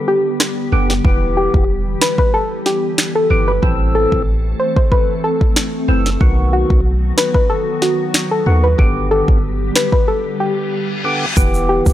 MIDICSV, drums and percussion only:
0, 0, Header, 1, 2, 480
1, 0, Start_track
1, 0, Key_signature, 1, "minor"
1, 0, Tempo, 645161
1, 779, Time_signature, 4, 2, 24, 8
1, 8877, End_track
2, 0, Start_track
2, 0, Title_t, "Drums"
2, 298, Note_on_c, 9, 37, 94
2, 298, Note_on_c, 9, 38, 112
2, 304, Note_on_c, 9, 26, 90
2, 372, Note_off_c, 9, 37, 0
2, 372, Note_off_c, 9, 38, 0
2, 379, Note_off_c, 9, 26, 0
2, 669, Note_on_c, 9, 38, 58
2, 743, Note_off_c, 9, 38, 0
2, 778, Note_on_c, 9, 36, 107
2, 853, Note_off_c, 9, 36, 0
2, 1146, Note_on_c, 9, 36, 93
2, 1221, Note_off_c, 9, 36, 0
2, 1499, Note_on_c, 9, 38, 110
2, 1506, Note_on_c, 9, 26, 88
2, 1573, Note_off_c, 9, 38, 0
2, 1580, Note_off_c, 9, 26, 0
2, 1624, Note_on_c, 9, 36, 93
2, 1699, Note_off_c, 9, 36, 0
2, 1978, Note_on_c, 9, 38, 60
2, 2053, Note_off_c, 9, 38, 0
2, 2218, Note_on_c, 9, 38, 116
2, 2225, Note_on_c, 9, 26, 90
2, 2293, Note_off_c, 9, 38, 0
2, 2299, Note_off_c, 9, 26, 0
2, 2699, Note_on_c, 9, 36, 107
2, 2773, Note_off_c, 9, 36, 0
2, 3067, Note_on_c, 9, 36, 89
2, 3141, Note_off_c, 9, 36, 0
2, 3545, Note_on_c, 9, 36, 92
2, 3619, Note_off_c, 9, 36, 0
2, 3658, Note_on_c, 9, 36, 92
2, 3733, Note_off_c, 9, 36, 0
2, 4026, Note_on_c, 9, 36, 96
2, 4100, Note_off_c, 9, 36, 0
2, 4139, Note_on_c, 9, 38, 115
2, 4146, Note_on_c, 9, 26, 93
2, 4213, Note_off_c, 9, 38, 0
2, 4220, Note_off_c, 9, 26, 0
2, 4509, Note_on_c, 9, 38, 60
2, 4583, Note_off_c, 9, 38, 0
2, 4619, Note_on_c, 9, 36, 104
2, 4693, Note_off_c, 9, 36, 0
2, 4986, Note_on_c, 9, 36, 92
2, 5061, Note_off_c, 9, 36, 0
2, 5339, Note_on_c, 9, 38, 111
2, 5346, Note_on_c, 9, 26, 88
2, 5414, Note_off_c, 9, 38, 0
2, 5420, Note_off_c, 9, 26, 0
2, 5464, Note_on_c, 9, 36, 94
2, 5539, Note_off_c, 9, 36, 0
2, 5818, Note_on_c, 9, 38, 61
2, 5892, Note_off_c, 9, 38, 0
2, 6058, Note_on_c, 9, 38, 113
2, 6064, Note_on_c, 9, 26, 91
2, 6132, Note_off_c, 9, 38, 0
2, 6139, Note_off_c, 9, 26, 0
2, 6538, Note_on_c, 9, 36, 109
2, 6613, Note_off_c, 9, 36, 0
2, 6906, Note_on_c, 9, 36, 91
2, 6980, Note_off_c, 9, 36, 0
2, 7258, Note_on_c, 9, 38, 109
2, 7265, Note_on_c, 9, 26, 93
2, 7332, Note_off_c, 9, 38, 0
2, 7339, Note_off_c, 9, 26, 0
2, 7384, Note_on_c, 9, 36, 96
2, 7458, Note_off_c, 9, 36, 0
2, 8458, Note_on_c, 9, 36, 111
2, 8458, Note_on_c, 9, 42, 72
2, 8460, Note_on_c, 9, 82, 78
2, 8532, Note_off_c, 9, 42, 0
2, 8533, Note_off_c, 9, 36, 0
2, 8534, Note_off_c, 9, 82, 0
2, 8588, Note_on_c, 9, 82, 52
2, 8662, Note_off_c, 9, 82, 0
2, 8825, Note_on_c, 9, 82, 70
2, 8826, Note_on_c, 9, 36, 94
2, 8877, Note_off_c, 9, 36, 0
2, 8877, Note_off_c, 9, 82, 0
2, 8877, End_track
0, 0, End_of_file